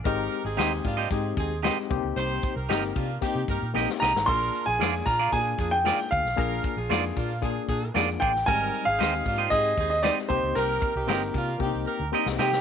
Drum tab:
HH |x-x-x-x-x-x-x-x-|x-x-x-x-x-x-----|x-x-x-x-x-x-x-x-|x-x-x-x-x-x-x-o-|
SD |----o-------o---|----o-------oooo|----o-------oo-o|----o-------o--o|
BD |o-----o-o-o---o-|--o---o-o-o-----|o-----o-o-o---o-|o-o---o-o-o---o-|

HH |x-x-x-x-x-x-x-x-|x-x-x-x---------|
SD |----o-------oo--|----o--------ooo|
BD |o-----o-o-o---o-|--o---o-o-------|